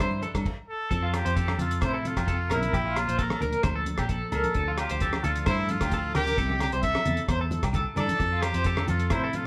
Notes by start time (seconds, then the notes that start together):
Already playing: G3 D4 E4
0.00 G2 C5, kick, cross-stick, closed hi-hat, low agogo
0.11 high conga
0.22 D4 A4, closed hi-hat, high conga
0.35 G2, kick, cross-stick, closed hi-hat, low agogo
0.46 kick, crash
0.69 A4
0.91 F2 F3 A4, kick, closed hi-hat
1.02 F4
1.14 G4, cross-stick, closed hi-hat, low agogo
1.25 F2 C5, closed hi-hat
1.36 F4 A4, kick, closed hi-hat
1.48 cross-stick, high conga, low agogo
1.58 F2 F4 A4, closed hi-hat, low conga
1.71 closed hi-hat
1.81 A2 C3 C5, kick, cross-stick, closed hi-hat, low agogo
1.86 E4
1.94 A4
2.05 F4, closed hi-hat, high conga
2.17 F2 G4, kick, cross-stick, closed hi-hat, low agogo
2.26 F4 A4, kick, closed hi-hat
2.50 B1 E4 A#4, cross-stick, closed hi-hat, low agogo
2.62 closed hi-hat, high conga
2.72 A#1 A#2 G4, kick, closed hi-hat
2.85 F4
2.96 F4, cross-stick, closed hi-hat, low agogo
3.08 A#1 C5, closed hi-hat
3.18 F3 A4, kick, closed hi-hat
3.22 A#4
3.30 cross-stick, high conga, low agogo
3.41 D2 D4 A#4, closed hi-hat, low conga
3.53 closed hi-hat
3.62 D2 F3 C5, kick, cross-stick, closed hi-hat, low agogo
3.76 A4
3.86 closed hi-hat, high conga
3.98 A#1 G4, kick, cross-stick, closed hi-hat, low agogo
4.09 F3 A4, kick, closed hi-hat
4.31 C#2 D4 A4 A#4, closed hi-hat, low conga, low agogo
4.44 closed hi-hat, high conga
4.54 D2 D3 A4, kick, closed hi-hat
4.68 F4
4.78 G4, cross-stick, closed hi-hat, low agogo
4.90 D2 C5, closed hi-hat
5.00 F3 A4, kick, closed hi-hat
5.13 cross-stick, high conga, low agogo
5.23 D2 D4 F4 A4, closed hi-hat, low conga
5.36 closed hi-hat
5.46 G2 A2 E4 C5, kick, cross-stick, closed hi-hat, low agogo
5.59 A4
5.69 F4, closed hi-hat, high conga
5.81 D2 G4, kick, cross-stick, closed hi-hat, low agogo
5.92 F3 A4, kick, closed hi-hat
6.14 D2 F4 G4 A#4, cross-stick, closed hi-hat, low conga, low agogo
6.27 closed hi-hat, high conga
6.36 C2 C3 G3 D4 E4 A4, kick, closed hi-hat
6.49 G4, high conga
6.60 G4, cross-stick, closed hi-hat, low conga, low agogo
6.72 C2 C5, closed hi-hat
6.82 G3 A4 E5, kick, closed hi-hat
6.95 cross-stick, high conga, low agogo
7.05 E2 E4 A4, closed hi-hat, high conga, low conga
7.17 closed hi-hat
7.27 E2 G2 C5, kick, cross-stick, closed hi-hat, low agogo
7.41 A4
7.51 closed hi-hat, high conga
7.63 C2 G4, kick, cross-stick, closed hi-hat, low agogo
7.73 D3 A4, kick, closed hi-hat, low conga
7.96 G2 E3 A4 D5, closed hi-hat, low conga, low agogo
8.09 closed hi-hat, high conga
8.18 F2 F3, muted clean electric guitar stroke, kick, closed hi-hat
8.32 F4
8.41 G4, cross-stick, closed hi-hat, low agogo
8.54 F2 C5, closed hi-hat
8.64 F4 A4, kick, closed hi-hat
8.77 cross-stick, high conga, low agogo
8.88 F2 F4 A4, closed hi-hat, low conga
9.00 closed hi-hat
9.10 A2 C3 E4 C5, kick, cross-stick, closed hi-hat, low agogo
9.24 A4
9.33 F4, closed hi-hat, high conga